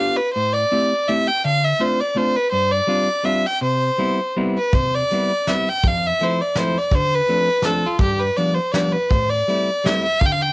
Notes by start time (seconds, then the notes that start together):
Already playing: F5
0.00 B3 D4 F4 G4
0.16 B4
0.33 A2 C5
0.53 D5
0.72 A3 C4 E4 G4
1.08 A3 C4 E4 G4 E5
1.28 G5
1.45 D3 F5
1.64 E5
1.80 A3 C4 D4 F4 C5
2.00 D5
2.16 A3 C4 D4 F4 C5
2.36 B4
2.51 G2 C5
2.71 D5
2.87 G3 C4 D4 F4
3.24 G3 C4 D4 F4 E5
3.46 G5
3.61 C3 C5
3.98 G3 B3 C4 E4
4.37 G3 B3 C4 E4
4.58 B4
4.73 C3 C5, kick, closed hi-hat
4.95 D5
5.10 G3 B3 C4 E4, closed hi-hat
5.47 G3 B3 C4 E4 E5, snare, closed hi-hat
5.69 G5
5.83 F2 F5, kick, closed hi-hat
6.06 E5
6.19 F3 A3 C4 E4, closed hi-hat
6.23 C5
6.41 D5
6.55 F3 A3 C4 C5, snare, closed hi-hat
6.59 E4
6.78 D5
6.91 D3 C5, kick, closed hi-hat
7.15 B4
7.27 F3 A3 C4 D4, closed hi-hat
7.62 F3 A3 C4 D4 A4, snare, closed hi-hat
7.87 F4
7.98 G2 G4, kick, closed hi-hat
8.19 B4
8.36 F3 G3 B3 D4 D5, closed hi-hat
8.54 C5
8.72 F3 G3 D5, snare, closed hi-hat
8.76 B3 D4
8.92 B4
9.09 A2 C5, kick, closed hi-hat
9.29 D5
9.48 G3 A3 C4 E4, closed hi-hat
9.84 G3 A3 C4 E4 E5, snare, closed hi-hat
10.03 E5
10.20 D3 F5, kick, closed hi-hat
10.26 G5
10.32 F5
10.42 G5